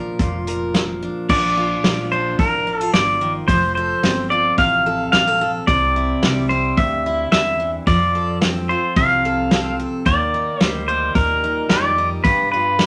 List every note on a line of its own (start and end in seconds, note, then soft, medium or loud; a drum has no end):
0.00 0.19 A#2 medium
0.00 0.74 F3 medium
0.00 1.01 D4 medium
0.00 0.20 F4 medium
0.00 0.47 A#4 medium
0.00 0.97 D5 medium
0.19 1.05 F1 medium
0.19 1.26 A#2 medium
0.19 1.27 F4 medium
0.19 kick loud
0.19 closed hi-hat medium
0.47 1.27 A#4 medium
0.47 closed hi-hat medium
0.74 1.83 F3 medium
0.74 snare loud
0.74 closed hi-hat medium
1.03 1.26 D4 medium
1.29 1.72 A#1 medium
1.29 2.39 A#2 medium
1.29 2.11 D4 medium
1.29 2.11 D5 medium
1.29 kick loud
1.29 crash loud
1.57 2.66 F4 medium
1.84 2.31 A#1 medium
1.84 3.48 F3 medium
1.84 snare loud
1.84 open hi-hat medium
2.12 2.66 D4 medium
2.12 2.40 C5 medium
2.39 2.86 A1 medium
2.39 2.76 A#4 medium
2.39 kick loud
2.39 open hi-hat medium
2.67 2.81 D4 medium
2.76 2.90 A4 medium
2.81 3.49 F4 soft
2.94 3.40 G1 medium
2.94 3.21 D3 medium
2.94 3.32 D5 medium
2.94 snare loud
2.94 open hi-hat medium
3.21 3.49 D#3 medium
3.48 3.91 F1 medium
3.48 5.68 F3 medium
3.48 4.30 F4 medium
3.48 3.74 C5 loud
3.48 kick loud
3.48 open hi-hat medium
3.75 4.85 A4 medium
3.75 4.27 C5 loud
4.03 4.50 G1 medium
4.03 5.12 C4 medium
4.03 snare loud
4.03 open hi-hat medium
4.30 5.65 F4 medium
4.30 4.56 D5 medium
4.58 5.05 A1 medium
4.58 5.67 C3 medium
4.58 5.11 F5 loud
4.58 kick loud
4.58 open hi-hat medium
4.86 5.13 A4 medium
5.12 5.59 A#1 medium
5.12 5.69 C4 medium
5.12 5.27 G4 medium
5.12 5.51 F5 loud
5.12 snare loud
5.12 open hi-hat medium
5.27 5.40 A4 medium
5.41 5.65 A4 medium
5.67 6.11 C2 medium
5.67 6.78 C3 medium
5.67 6.50 C4 medium
5.67 6.46 D5 loud
5.67 kick loud
5.67 open hi-hat soft
5.96 7.05 E4 medium
6.23 6.69 C2 medium
6.23 7.84 G3 medium
6.23 snare loud
6.23 open hi-hat soft
6.49 7.84 C4 medium
6.49 6.78 C5 medium
6.77 7.24 D2 medium
6.77 7.87 G2 medium
6.77 7.28 E5 loud
6.77 kick loud
6.77 open hi-hat medium
7.06 7.84 E4 medium
7.32 7.79 E2 medium
7.32 7.59 D3 medium
7.32 7.70 E5 loud
7.32 snare loud
7.32 open hi-hat medium
7.60 7.87 E3 medium
7.87 8.73 F2 medium
7.87 10.06 F3 medium
7.87 8.69 F4 soft
7.87 8.38 D5 medium
7.87 kick loud
7.87 open hi-hat medium
8.15 9.24 A4 medium
8.42 9.50 C4 medium
8.42 snare loud
8.42 open hi-hat medium
8.69 10.03 F4 medium
8.69 8.97 C5 medium
8.96 9.82 C2 medium
8.96 10.05 C3 medium
8.96 9.75 F5 loud
8.96 kick loud
8.96 open hi-hat medium
9.25 9.50 A4 medium
9.51 10.03 C4 medium
9.51 9.78 A4 medium
9.51 snare loud
9.51 open hi-hat medium
9.79 10.03 A4 medium
10.06 10.49 D#2 medium
10.06 12.21 D#3 medium
10.06 10.87 A#3 medium
10.06 10.62 D5 loud
10.06 kick loud
10.06 open hi-hat medium
10.34 11.43 D#4 medium
10.60 11.07 D2 medium
10.60 11.70 G3 medium
10.60 10.84 C5 loud
10.60 snare loud
10.60 open hi-hat soft
10.88 12.25 A#3 medium
10.88 11.13 C5 medium
11.15 11.62 D#2 medium
11.15 12.22 A#2 medium
11.15 11.72 A#4 medium
11.15 kick loud
11.15 open hi-hat medium
11.44 11.97 D#4 medium
11.70 12.16 F2 medium
11.70 12.57 G3 medium
11.70 12.86 G4 medium
11.70 12.08 D5 loud
11.70 snare loud
11.70 open hi-hat medium
11.98 12.22 D#4 medium
12.24 12.86 G2 medium
12.24 12.86 B3 medium
12.24 12.50 B4 loud
12.24 kick loud
12.24 open hi-hat medium
12.52 12.86 F4 medium
12.52 12.86 B4 medium
12.79 12.86 G3 medium
12.79 snare loud
12.79 open hi-hat medium